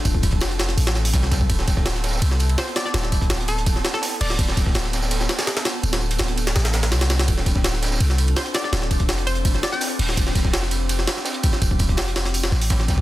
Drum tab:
RD |x---x---x---x-----x-----x---x---|x---x---x---x---x---x-x-x---x---|x---x---x---x---x---x-------x---|x---x---x---x---x---x-x-x-x-x---|
HH |------x---x---x-o-----o---------|--------------------------x-----|------x---x---x---------o---o---|--------------------------x-----|
TB |x---x---x---x---x---x---x---x---|x---x---x---xxxxx---x---x---x---|x---x---x---x---x---x---x-------|x---x---x---x-x-x-x-x-x-x---x---|
SD |--------o---o-o---o-o---o-o-o---|--o-o-o-o-o-oooo--o-----o---o-o-|o-o-----o---------o-o-o-o-----o-|--o-o-o-o-o-o-o-o-o-o-o-o-o-o---|
BD |o-o-o-o-----------------o---o-o-|o---o-o-------------------------|----o-o---------o---------------|o---o-o-------------------------|

RD |x-x---x-x---x-x-x-x-x-x-x-x-x-x-|x---x---x---x---x---x-x-x---x---|x---x---x---x---x---x-------x---|x---x---x---x---x---x---x---x---|
HH |------x---x---------------------|--------------------------x-----|------x---x---x---------o---o---|--------------------------x-----|
TB |x---x---x---x---x-x-x-x-x---x---|x---x---x---xxxxx---x---x---x---|x---x---x---x---x---x---x-------|x---x---x---x---x---x---x---x---|
SD |--o-----o-----o-o-o-o-o-o-o-o-o-|--o-o-o-o-o-oooo--o-----o---o-o-|o-o-----o---------o-o-o-o-----o-|--o-o-o-o-o-------o-o-o-o-----o-|
BD |--------------------------------|o---o-o-------------------------|----o-o---------o---------------|o---o-o---------------------o---|

RD |x---x---x---x-----x-----x---x---|
HH |------x---x---x-o-----o---------|
TB |x---x---x---x---x---x---x---x---|
SD |--------o---o-o---o-o---o-o-o---|
BD |o-o-o-o-----------------o---o-o-|